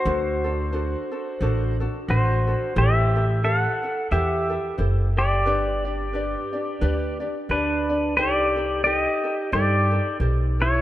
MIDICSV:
0, 0, Header, 1, 4, 480
1, 0, Start_track
1, 0, Key_signature, 1, "major"
1, 0, Tempo, 676437
1, 41, Time_signature, 4, 2, 24, 8
1, 7675, End_track
2, 0, Start_track
2, 0, Title_t, "Pedal steel guitar"
2, 0, Program_c, 0, 26
2, 0, Note_on_c, 0, 66, 67
2, 0, Note_on_c, 0, 72, 95
2, 1250, Note_off_c, 0, 72, 0
2, 1254, Note_off_c, 0, 66, 0
2, 1490, Note_on_c, 0, 66, 59
2, 1494, Note_on_c, 0, 72, 75
2, 1937, Note_off_c, 0, 66, 0
2, 1974, Note_on_c, 0, 76, 89
2, 1975, Note_on_c, 0, 67, 76
2, 1980, Note_off_c, 0, 72, 0
2, 2419, Note_off_c, 0, 67, 0
2, 2443, Note_on_c, 0, 69, 74
2, 2445, Note_on_c, 0, 78, 96
2, 2460, Note_off_c, 0, 76, 0
2, 2892, Note_off_c, 0, 69, 0
2, 2923, Note_on_c, 0, 76, 71
2, 2926, Note_on_c, 0, 67, 59
2, 2935, Note_off_c, 0, 78, 0
2, 3372, Note_off_c, 0, 76, 0
2, 3374, Note_off_c, 0, 67, 0
2, 3679, Note_on_c, 0, 67, 74
2, 3680, Note_on_c, 0, 74, 87
2, 5087, Note_off_c, 0, 74, 0
2, 5088, Note_off_c, 0, 67, 0
2, 5330, Note_on_c, 0, 71, 75
2, 5338, Note_on_c, 0, 62, 53
2, 5779, Note_off_c, 0, 62, 0
2, 5794, Note_off_c, 0, 71, 0
2, 5797, Note_on_c, 0, 74, 96
2, 5811, Note_on_c, 0, 67, 76
2, 6256, Note_off_c, 0, 67, 0
2, 6270, Note_off_c, 0, 74, 0
2, 6272, Note_on_c, 0, 74, 91
2, 6294, Note_on_c, 0, 67, 74
2, 6350, Note_off_c, 0, 74, 0
2, 6350, Note_on_c, 0, 75, 91
2, 6737, Note_off_c, 0, 67, 0
2, 6761, Note_off_c, 0, 75, 0
2, 6764, Note_on_c, 0, 74, 88
2, 6779, Note_on_c, 0, 67, 64
2, 7213, Note_off_c, 0, 74, 0
2, 7220, Note_off_c, 0, 67, 0
2, 7533, Note_on_c, 0, 73, 100
2, 7538, Note_on_c, 0, 64, 69
2, 7675, Note_off_c, 0, 64, 0
2, 7675, Note_off_c, 0, 73, 0
2, 7675, End_track
3, 0, Start_track
3, 0, Title_t, "Ukulele"
3, 0, Program_c, 1, 24
3, 36, Note_on_c, 1, 72, 74
3, 40, Note_on_c, 1, 62, 76
3, 46, Note_on_c, 1, 66, 76
3, 47, Note_on_c, 1, 69, 83
3, 304, Note_off_c, 1, 69, 0
3, 310, Note_off_c, 1, 72, 0
3, 313, Note_on_c, 1, 69, 58
3, 314, Note_off_c, 1, 66, 0
3, 317, Note_off_c, 1, 62, 0
3, 323, Note_on_c, 1, 66, 56
3, 327, Note_on_c, 1, 62, 46
3, 510, Note_off_c, 1, 62, 0
3, 512, Note_off_c, 1, 69, 0
3, 514, Note_on_c, 1, 72, 64
3, 516, Note_off_c, 1, 66, 0
3, 518, Note_on_c, 1, 62, 69
3, 525, Note_on_c, 1, 66, 61
3, 529, Note_on_c, 1, 69, 67
3, 782, Note_off_c, 1, 69, 0
3, 788, Note_off_c, 1, 72, 0
3, 790, Note_off_c, 1, 66, 0
3, 791, Note_on_c, 1, 69, 54
3, 796, Note_off_c, 1, 62, 0
3, 799, Note_on_c, 1, 66, 53
3, 804, Note_on_c, 1, 62, 44
3, 997, Note_off_c, 1, 62, 0
3, 997, Note_off_c, 1, 69, 0
3, 998, Note_off_c, 1, 66, 0
3, 1000, Note_on_c, 1, 72, 74
3, 1006, Note_on_c, 1, 62, 94
3, 1006, Note_on_c, 1, 66, 92
3, 1013, Note_on_c, 1, 69, 93
3, 1270, Note_off_c, 1, 69, 0
3, 1276, Note_off_c, 1, 72, 0
3, 1277, Note_off_c, 1, 66, 0
3, 1278, Note_on_c, 1, 69, 59
3, 1279, Note_off_c, 1, 62, 0
3, 1285, Note_on_c, 1, 66, 61
3, 1292, Note_on_c, 1, 62, 48
3, 1481, Note_off_c, 1, 69, 0
3, 1482, Note_off_c, 1, 66, 0
3, 1483, Note_off_c, 1, 62, 0
3, 1483, Note_on_c, 1, 72, 66
3, 1491, Note_on_c, 1, 62, 60
3, 1491, Note_on_c, 1, 66, 65
3, 1498, Note_on_c, 1, 69, 66
3, 1746, Note_off_c, 1, 69, 0
3, 1752, Note_off_c, 1, 72, 0
3, 1755, Note_on_c, 1, 69, 47
3, 1757, Note_off_c, 1, 66, 0
3, 1762, Note_off_c, 1, 62, 0
3, 1765, Note_on_c, 1, 66, 47
3, 1772, Note_on_c, 1, 62, 41
3, 1953, Note_off_c, 1, 69, 0
3, 1956, Note_on_c, 1, 72, 76
3, 1957, Note_off_c, 1, 62, 0
3, 1959, Note_on_c, 1, 64, 83
3, 1961, Note_on_c, 1, 67, 74
3, 1963, Note_off_c, 1, 66, 0
3, 1966, Note_on_c, 1, 69, 76
3, 2231, Note_off_c, 1, 69, 0
3, 2234, Note_off_c, 1, 72, 0
3, 2236, Note_off_c, 1, 64, 0
3, 2237, Note_off_c, 1, 67, 0
3, 2240, Note_on_c, 1, 69, 60
3, 2246, Note_on_c, 1, 67, 55
3, 2250, Note_on_c, 1, 64, 50
3, 2434, Note_off_c, 1, 64, 0
3, 2434, Note_off_c, 1, 69, 0
3, 2437, Note_on_c, 1, 72, 52
3, 2438, Note_off_c, 1, 67, 0
3, 2443, Note_on_c, 1, 64, 65
3, 2447, Note_on_c, 1, 67, 62
3, 2450, Note_on_c, 1, 69, 63
3, 2708, Note_off_c, 1, 69, 0
3, 2714, Note_off_c, 1, 72, 0
3, 2717, Note_off_c, 1, 64, 0
3, 2717, Note_off_c, 1, 67, 0
3, 2717, Note_on_c, 1, 69, 54
3, 2725, Note_on_c, 1, 67, 44
3, 2727, Note_on_c, 1, 64, 45
3, 2915, Note_off_c, 1, 64, 0
3, 2915, Note_off_c, 1, 69, 0
3, 2918, Note_on_c, 1, 72, 82
3, 2919, Note_off_c, 1, 67, 0
3, 2923, Note_on_c, 1, 64, 79
3, 2927, Note_on_c, 1, 67, 89
3, 2929, Note_on_c, 1, 69, 87
3, 3182, Note_off_c, 1, 69, 0
3, 3186, Note_off_c, 1, 67, 0
3, 3187, Note_off_c, 1, 72, 0
3, 3190, Note_on_c, 1, 69, 57
3, 3194, Note_on_c, 1, 67, 49
3, 3196, Note_off_c, 1, 64, 0
3, 3204, Note_on_c, 1, 64, 44
3, 3386, Note_off_c, 1, 69, 0
3, 3389, Note_off_c, 1, 64, 0
3, 3389, Note_on_c, 1, 72, 65
3, 3392, Note_off_c, 1, 67, 0
3, 3397, Note_on_c, 1, 64, 68
3, 3401, Note_on_c, 1, 67, 68
3, 3405, Note_on_c, 1, 69, 66
3, 3656, Note_off_c, 1, 69, 0
3, 3661, Note_off_c, 1, 67, 0
3, 3662, Note_off_c, 1, 72, 0
3, 3665, Note_on_c, 1, 69, 47
3, 3669, Note_off_c, 1, 64, 0
3, 3670, Note_on_c, 1, 67, 50
3, 3678, Note_on_c, 1, 64, 45
3, 3869, Note_off_c, 1, 67, 0
3, 3872, Note_on_c, 1, 71, 73
3, 3873, Note_off_c, 1, 69, 0
3, 3876, Note_off_c, 1, 64, 0
3, 3877, Note_on_c, 1, 62, 75
3, 3879, Note_on_c, 1, 67, 86
3, 3882, Note_on_c, 1, 74, 90
3, 4142, Note_off_c, 1, 74, 0
3, 4150, Note_on_c, 1, 74, 54
3, 4151, Note_off_c, 1, 71, 0
3, 4154, Note_off_c, 1, 62, 0
3, 4155, Note_off_c, 1, 67, 0
3, 4162, Note_on_c, 1, 67, 53
3, 4166, Note_on_c, 1, 62, 41
3, 4350, Note_off_c, 1, 62, 0
3, 4351, Note_off_c, 1, 67, 0
3, 4351, Note_on_c, 1, 71, 57
3, 4356, Note_off_c, 1, 74, 0
3, 4358, Note_on_c, 1, 62, 65
3, 4360, Note_on_c, 1, 67, 68
3, 4365, Note_on_c, 1, 74, 71
3, 4623, Note_off_c, 1, 74, 0
3, 4630, Note_off_c, 1, 71, 0
3, 4631, Note_off_c, 1, 67, 0
3, 4632, Note_on_c, 1, 74, 54
3, 4634, Note_off_c, 1, 62, 0
3, 4639, Note_on_c, 1, 67, 51
3, 4645, Note_on_c, 1, 62, 47
3, 4829, Note_off_c, 1, 62, 0
3, 4833, Note_off_c, 1, 67, 0
3, 4834, Note_on_c, 1, 71, 92
3, 4836, Note_off_c, 1, 74, 0
3, 4838, Note_on_c, 1, 62, 91
3, 4842, Note_on_c, 1, 67, 91
3, 4845, Note_on_c, 1, 74, 91
3, 5101, Note_off_c, 1, 74, 0
3, 5109, Note_off_c, 1, 67, 0
3, 5110, Note_on_c, 1, 74, 61
3, 5112, Note_off_c, 1, 71, 0
3, 5114, Note_off_c, 1, 62, 0
3, 5117, Note_on_c, 1, 67, 53
3, 5122, Note_on_c, 1, 62, 49
3, 5314, Note_off_c, 1, 62, 0
3, 5315, Note_off_c, 1, 74, 0
3, 5317, Note_off_c, 1, 67, 0
3, 5317, Note_on_c, 1, 71, 66
3, 5323, Note_on_c, 1, 62, 60
3, 5325, Note_on_c, 1, 67, 62
3, 5331, Note_on_c, 1, 74, 69
3, 5593, Note_off_c, 1, 71, 0
3, 5593, Note_off_c, 1, 74, 0
3, 5597, Note_off_c, 1, 62, 0
3, 5598, Note_off_c, 1, 67, 0
3, 5602, Note_on_c, 1, 74, 48
3, 5611, Note_on_c, 1, 67, 43
3, 5616, Note_on_c, 1, 62, 37
3, 5792, Note_off_c, 1, 74, 0
3, 5795, Note_on_c, 1, 72, 75
3, 5798, Note_off_c, 1, 67, 0
3, 5801, Note_off_c, 1, 62, 0
3, 5804, Note_on_c, 1, 63, 74
3, 5806, Note_on_c, 1, 67, 75
3, 5807, Note_on_c, 1, 69, 82
3, 6064, Note_off_c, 1, 69, 0
3, 6070, Note_off_c, 1, 72, 0
3, 6073, Note_off_c, 1, 67, 0
3, 6073, Note_on_c, 1, 69, 56
3, 6077, Note_off_c, 1, 63, 0
3, 6082, Note_on_c, 1, 67, 50
3, 6088, Note_on_c, 1, 63, 49
3, 6273, Note_off_c, 1, 63, 0
3, 6275, Note_off_c, 1, 69, 0
3, 6278, Note_on_c, 1, 72, 56
3, 6279, Note_off_c, 1, 67, 0
3, 6282, Note_on_c, 1, 63, 61
3, 6287, Note_on_c, 1, 67, 61
3, 6290, Note_on_c, 1, 69, 65
3, 6547, Note_off_c, 1, 69, 0
3, 6553, Note_off_c, 1, 72, 0
3, 6555, Note_off_c, 1, 67, 0
3, 6556, Note_off_c, 1, 63, 0
3, 6556, Note_on_c, 1, 69, 48
3, 6563, Note_on_c, 1, 67, 45
3, 6570, Note_on_c, 1, 63, 41
3, 6754, Note_off_c, 1, 69, 0
3, 6756, Note_off_c, 1, 63, 0
3, 6757, Note_off_c, 1, 67, 0
3, 6757, Note_on_c, 1, 72, 84
3, 6764, Note_on_c, 1, 63, 75
3, 6765, Note_on_c, 1, 67, 76
3, 6771, Note_on_c, 1, 69, 80
3, 7025, Note_off_c, 1, 69, 0
3, 7031, Note_off_c, 1, 72, 0
3, 7033, Note_off_c, 1, 67, 0
3, 7034, Note_on_c, 1, 69, 56
3, 7037, Note_off_c, 1, 63, 0
3, 7042, Note_on_c, 1, 67, 52
3, 7050, Note_on_c, 1, 63, 43
3, 7234, Note_off_c, 1, 69, 0
3, 7236, Note_off_c, 1, 63, 0
3, 7237, Note_off_c, 1, 67, 0
3, 7237, Note_on_c, 1, 72, 57
3, 7244, Note_on_c, 1, 63, 61
3, 7245, Note_on_c, 1, 67, 67
3, 7252, Note_on_c, 1, 69, 59
3, 7509, Note_off_c, 1, 69, 0
3, 7514, Note_off_c, 1, 72, 0
3, 7517, Note_on_c, 1, 69, 49
3, 7518, Note_off_c, 1, 63, 0
3, 7518, Note_off_c, 1, 67, 0
3, 7527, Note_on_c, 1, 67, 47
3, 7675, Note_off_c, 1, 67, 0
3, 7675, Note_off_c, 1, 69, 0
3, 7675, End_track
4, 0, Start_track
4, 0, Title_t, "Upright bass"
4, 0, Program_c, 2, 32
4, 39, Note_on_c, 2, 38, 99
4, 663, Note_off_c, 2, 38, 0
4, 997, Note_on_c, 2, 33, 85
4, 1310, Note_off_c, 2, 33, 0
4, 1480, Note_on_c, 2, 33, 89
4, 1791, Note_off_c, 2, 33, 0
4, 1960, Note_on_c, 2, 33, 101
4, 2583, Note_off_c, 2, 33, 0
4, 2920, Note_on_c, 2, 40, 87
4, 3231, Note_off_c, 2, 40, 0
4, 3396, Note_on_c, 2, 30, 87
4, 3875, Note_off_c, 2, 30, 0
4, 3875, Note_on_c, 2, 31, 103
4, 4499, Note_off_c, 2, 31, 0
4, 4836, Note_on_c, 2, 38, 91
4, 5148, Note_off_c, 2, 38, 0
4, 5316, Note_on_c, 2, 38, 83
4, 5797, Note_off_c, 2, 38, 0
4, 5797, Note_on_c, 2, 36, 92
4, 6421, Note_off_c, 2, 36, 0
4, 6760, Note_on_c, 2, 43, 88
4, 7071, Note_off_c, 2, 43, 0
4, 7237, Note_on_c, 2, 35, 85
4, 7675, Note_off_c, 2, 35, 0
4, 7675, End_track
0, 0, End_of_file